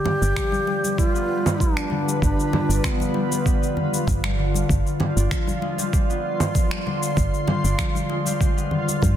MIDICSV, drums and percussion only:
0, 0, Header, 1, 2, 480
1, 0, Start_track
1, 0, Tempo, 618557
1, 1723, Time_signature, 4, 2, 24, 8
1, 7113, End_track
2, 0, Start_track
2, 0, Title_t, "Drums"
2, 35, Note_on_c, 9, 63, 58
2, 43, Note_on_c, 9, 62, 65
2, 43, Note_on_c, 9, 64, 57
2, 113, Note_off_c, 9, 63, 0
2, 121, Note_off_c, 9, 62, 0
2, 121, Note_off_c, 9, 64, 0
2, 176, Note_on_c, 9, 69, 61
2, 254, Note_off_c, 9, 69, 0
2, 283, Note_on_c, 9, 26, 75
2, 283, Note_on_c, 9, 36, 89
2, 289, Note_on_c, 9, 69, 51
2, 361, Note_off_c, 9, 26, 0
2, 361, Note_off_c, 9, 36, 0
2, 366, Note_off_c, 9, 69, 0
2, 403, Note_on_c, 9, 63, 81
2, 416, Note_on_c, 9, 69, 32
2, 481, Note_off_c, 9, 63, 0
2, 494, Note_off_c, 9, 69, 0
2, 522, Note_on_c, 9, 62, 53
2, 600, Note_off_c, 9, 62, 0
2, 654, Note_on_c, 9, 62, 38
2, 657, Note_on_c, 9, 69, 64
2, 732, Note_off_c, 9, 62, 0
2, 734, Note_off_c, 9, 69, 0
2, 762, Note_on_c, 9, 62, 33
2, 763, Note_on_c, 9, 36, 94
2, 769, Note_on_c, 9, 69, 54
2, 839, Note_off_c, 9, 62, 0
2, 841, Note_off_c, 9, 36, 0
2, 846, Note_off_c, 9, 69, 0
2, 897, Note_on_c, 9, 69, 30
2, 975, Note_off_c, 9, 69, 0
2, 1133, Note_on_c, 9, 64, 69
2, 1139, Note_on_c, 9, 69, 61
2, 1211, Note_off_c, 9, 64, 0
2, 1216, Note_off_c, 9, 69, 0
2, 1244, Note_on_c, 9, 36, 99
2, 1251, Note_on_c, 9, 69, 53
2, 1321, Note_off_c, 9, 36, 0
2, 1328, Note_off_c, 9, 69, 0
2, 1372, Note_on_c, 9, 63, 35
2, 1373, Note_on_c, 9, 26, 77
2, 1378, Note_on_c, 9, 69, 31
2, 1450, Note_off_c, 9, 26, 0
2, 1450, Note_off_c, 9, 63, 0
2, 1456, Note_off_c, 9, 69, 0
2, 1473, Note_on_c, 9, 63, 58
2, 1551, Note_off_c, 9, 63, 0
2, 1620, Note_on_c, 9, 69, 67
2, 1697, Note_off_c, 9, 69, 0
2, 1724, Note_on_c, 9, 36, 110
2, 1732, Note_on_c, 9, 69, 55
2, 1801, Note_off_c, 9, 36, 0
2, 1809, Note_off_c, 9, 69, 0
2, 1860, Note_on_c, 9, 69, 32
2, 1937, Note_off_c, 9, 69, 0
2, 1964, Note_on_c, 9, 62, 67
2, 1964, Note_on_c, 9, 63, 60
2, 1966, Note_on_c, 9, 64, 55
2, 2041, Note_off_c, 9, 63, 0
2, 2042, Note_off_c, 9, 62, 0
2, 2043, Note_off_c, 9, 64, 0
2, 2099, Note_on_c, 9, 69, 64
2, 2177, Note_off_c, 9, 69, 0
2, 2204, Note_on_c, 9, 36, 102
2, 2205, Note_on_c, 9, 26, 79
2, 2211, Note_on_c, 9, 69, 54
2, 2282, Note_off_c, 9, 36, 0
2, 2283, Note_off_c, 9, 26, 0
2, 2288, Note_off_c, 9, 69, 0
2, 2329, Note_on_c, 9, 63, 79
2, 2339, Note_on_c, 9, 69, 34
2, 2406, Note_off_c, 9, 63, 0
2, 2417, Note_off_c, 9, 69, 0
2, 2439, Note_on_c, 9, 62, 49
2, 2516, Note_off_c, 9, 62, 0
2, 2571, Note_on_c, 9, 62, 35
2, 2578, Note_on_c, 9, 69, 72
2, 2649, Note_off_c, 9, 62, 0
2, 2656, Note_off_c, 9, 69, 0
2, 2684, Note_on_c, 9, 36, 101
2, 2689, Note_on_c, 9, 69, 57
2, 2761, Note_off_c, 9, 36, 0
2, 2766, Note_off_c, 9, 69, 0
2, 2818, Note_on_c, 9, 69, 34
2, 2896, Note_off_c, 9, 69, 0
2, 2925, Note_on_c, 9, 64, 91
2, 3002, Note_off_c, 9, 64, 0
2, 3052, Note_on_c, 9, 63, 35
2, 3058, Note_on_c, 9, 69, 61
2, 3129, Note_off_c, 9, 63, 0
2, 3135, Note_off_c, 9, 69, 0
2, 3160, Note_on_c, 9, 63, 63
2, 3163, Note_on_c, 9, 36, 100
2, 3167, Note_on_c, 9, 69, 54
2, 3238, Note_off_c, 9, 63, 0
2, 3241, Note_off_c, 9, 36, 0
2, 3245, Note_off_c, 9, 69, 0
2, 3289, Note_on_c, 9, 26, 82
2, 3295, Note_on_c, 9, 69, 33
2, 3367, Note_off_c, 9, 26, 0
2, 3372, Note_off_c, 9, 69, 0
2, 3527, Note_on_c, 9, 63, 63
2, 3536, Note_on_c, 9, 69, 67
2, 3605, Note_off_c, 9, 63, 0
2, 3614, Note_off_c, 9, 69, 0
2, 3643, Note_on_c, 9, 36, 113
2, 3650, Note_on_c, 9, 69, 59
2, 3720, Note_off_c, 9, 36, 0
2, 3727, Note_off_c, 9, 69, 0
2, 3777, Note_on_c, 9, 69, 32
2, 3854, Note_off_c, 9, 69, 0
2, 3878, Note_on_c, 9, 62, 57
2, 3882, Note_on_c, 9, 64, 56
2, 3883, Note_on_c, 9, 63, 55
2, 3956, Note_off_c, 9, 62, 0
2, 3960, Note_off_c, 9, 64, 0
2, 3961, Note_off_c, 9, 63, 0
2, 4015, Note_on_c, 9, 69, 62
2, 4093, Note_off_c, 9, 69, 0
2, 4122, Note_on_c, 9, 26, 70
2, 4123, Note_on_c, 9, 36, 99
2, 4128, Note_on_c, 9, 69, 54
2, 4200, Note_off_c, 9, 26, 0
2, 4200, Note_off_c, 9, 36, 0
2, 4205, Note_off_c, 9, 69, 0
2, 4248, Note_on_c, 9, 63, 78
2, 4256, Note_on_c, 9, 69, 35
2, 4326, Note_off_c, 9, 63, 0
2, 4334, Note_off_c, 9, 69, 0
2, 4361, Note_on_c, 9, 62, 52
2, 4439, Note_off_c, 9, 62, 0
2, 4488, Note_on_c, 9, 62, 36
2, 4494, Note_on_c, 9, 69, 72
2, 4566, Note_off_c, 9, 62, 0
2, 4572, Note_off_c, 9, 69, 0
2, 4603, Note_on_c, 9, 36, 100
2, 4607, Note_on_c, 9, 62, 36
2, 4607, Note_on_c, 9, 69, 60
2, 4681, Note_off_c, 9, 36, 0
2, 4684, Note_off_c, 9, 69, 0
2, 4685, Note_off_c, 9, 62, 0
2, 4735, Note_on_c, 9, 69, 34
2, 4812, Note_off_c, 9, 69, 0
2, 4968, Note_on_c, 9, 64, 66
2, 4973, Note_on_c, 9, 69, 61
2, 5045, Note_off_c, 9, 64, 0
2, 5051, Note_off_c, 9, 69, 0
2, 5083, Note_on_c, 9, 36, 105
2, 5085, Note_on_c, 9, 69, 56
2, 5161, Note_off_c, 9, 36, 0
2, 5162, Note_off_c, 9, 69, 0
2, 5209, Note_on_c, 9, 26, 78
2, 5213, Note_on_c, 9, 63, 36
2, 5214, Note_on_c, 9, 69, 33
2, 5287, Note_off_c, 9, 26, 0
2, 5291, Note_off_c, 9, 63, 0
2, 5292, Note_off_c, 9, 69, 0
2, 5328, Note_on_c, 9, 63, 62
2, 5406, Note_off_c, 9, 63, 0
2, 5455, Note_on_c, 9, 69, 63
2, 5533, Note_off_c, 9, 69, 0
2, 5564, Note_on_c, 9, 36, 112
2, 5566, Note_on_c, 9, 69, 59
2, 5641, Note_off_c, 9, 36, 0
2, 5644, Note_off_c, 9, 69, 0
2, 5696, Note_on_c, 9, 69, 32
2, 5773, Note_off_c, 9, 69, 0
2, 5800, Note_on_c, 9, 62, 51
2, 5802, Note_on_c, 9, 64, 54
2, 5804, Note_on_c, 9, 63, 53
2, 5878, Note_off_c, 9, 62, 0
2, 5880, Note_off_c, 9, 64, 0
2, 5882, Note_off_c, 9, 63, 0
2, 5936, Note_on_c, 9, 69, 67
2, 6014, Note_off_c, 9, 69, 0
2, 6043, Note_on_c, 9, 26, 69
2, 6044, Note_on_c, 9, 36, 98
2, 6048, Note_on_c, 9, 69, 54
2, 6121, Note_off_c, 9, 26, 0
2, 6121, Note_off_c, 9, 36, 0
2, 6126, Note_off_c, 9, 69, 0
2, 6170, Note_on_c, 9, 63, 67
2, 6178, Note_on_c, 9, 69, 32
2, 6248, Note_off_c, 9, 63, 0
2, 6256, Note_off_c, 9, 69, 0
2, 6282, Note_on_c, 9, 62, 47
2, 6359, Note_off_c, 9, 62, 0
2, 6407, Note_on_c, 9, 62, 33
2, 6416, Note_on_c, 9, 69, 72
2, 6485, Note_off_c, 9, 62, 0
2, 6494, Note_off_c, 9, 69, 0
2, 6523, Note_on_c, 9, 36, 100
2, 6528, Note_on_c, 9, 69, 52
2, 6601, Note_off_c, 9, 36, 0
2, 6606, Note_off_c, 9, 69, 0
2, 6658, Note_on_c, 9, 69, 31
2, 6736, Note_off_c, 9, 69, 0
2, 6760, Note_on_c, 9, 64, 89
2, 6838, Note_off_c, 9, 64, 0
2, 6891, Note_on_c, 9, 63, 34
2, 6898, Note_on_c, 9, 69, 65
2, 6968, Note_off_c, 9, 63, 0
2, 6976, Note_off_c, 9, 69, 0
2, 6998, Note_on_c, 9, 63, 54
2, 7004, Note_on_c, 9, 36, 98
2, 7009, Note_on_c, 9, 69, 57
2, 7076, Note_off_c, 9, 63, 0
2, 7081, Note_off_c, 9, 36, 0
2, 7086, Note_off_c, 9, 69, 0
2, 7113, End_track
0, 0, End_of_file